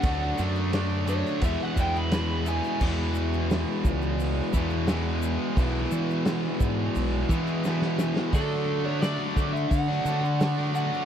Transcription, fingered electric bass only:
\new Staff \with { instrumentName = "Fingered electric bass" } { \clef bass \time 4/4 \key e \dorian \tempo 4 = 87 d,8 fis,4. e,16 r16 e,4. | e,4. cis,4 e,4. | b,,8 e4 gis,8 b,,8 e4. | \key d \lydian d4. d8 d8 d4. | }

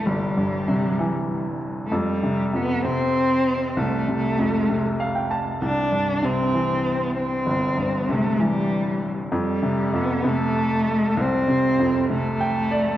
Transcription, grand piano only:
<<
  \new Staff \with { instrumentName = "Grand piano" } { \time 6/8 \key f \lydian \tempo 4. = 65 r2. | r2. | r2 f''16 g''16 a''8 | r2. |
r2. | r2. | r2 g''8 d''8 | }
  \new Staff \with { instrumentName = "Grand piano" } { \clef bass \time 6/8 \key f \lydian <g,, e>8 g,8 c8 e4. | f,8 c8 f,8 c4. | c,8 c8 f,8 c4. | c,8 g,8 c8 e4. |
g,,8 g,8 c8 e4. | f,8 c8 f,8 c4. | c,8 c8 f,8 c4. | }
>>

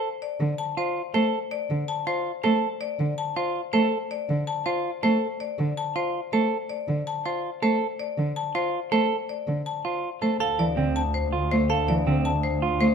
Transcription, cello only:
\new Staff \with { instrumentName = "Cello" } { \clef bass \time 7/8 \key d \minor \tempo 4 = 162 r4 d8 r4. a8 | r4 d8 r4. a8 | r4 d8 r4. a8 | r4 d8 r4. a8 |
r4 d8 r4. a8 | r4 d8 r4. a8 | r4 d8 r4. a8 | r4 d8 r4. a8 |
r8 e8 d8 r4. a8 | r8 e8 d8 r4. a8 | }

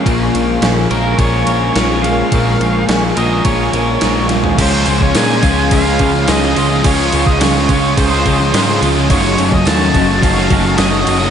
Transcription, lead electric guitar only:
\new Staff \with { instrumentName = "Lead electric guitar" } { \time 4/4 \key des \major \tempo 4 = 106 r4. bes'8 des''4 des''8 f''8~ | f''4 r8 ees''8 des''4. r8 | c''8. des''16 aes''4 f''4 ees''4 | des''8. ees''16 des''4 c''4. r8 |
des''8. ees''16 a''4 f''4 ees''4 | }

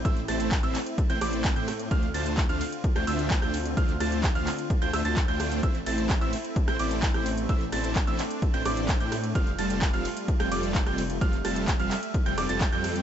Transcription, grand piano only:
\new Staff \with { instrumentName = "Grand piano" } { \time 4/4 \key a \minor \tempo 4 = 129 e'''16 r16 a'''8 r16 e'''16 r8. g'''16 d'''8. g'''16 r8 | f'''16 r16 a'''8 r16 f'''16 r8. g'''16 e'''8. g'''16 r8 | f'''16 r16 a'''8 r16 f'''16 r8. g'''16 e'''16 a'''16 r16 g'''8. | e'''16 r16 a'''8 r16 e'''16 r8. g'''16 d'''8. g'''16 r8 |
e'''16 r16 a'''8 r16 e'''16 r8. g'''16 d'''8. g'''16 r8 | f'''16 r16 a'''8 r16 f'''16 r8. g'''16 d'''8. g'''16 r8 | f'''16 r16 a'''8 r16 f'''16 r8. g'''16 d'''16 a'''16 r16 g'''8. | }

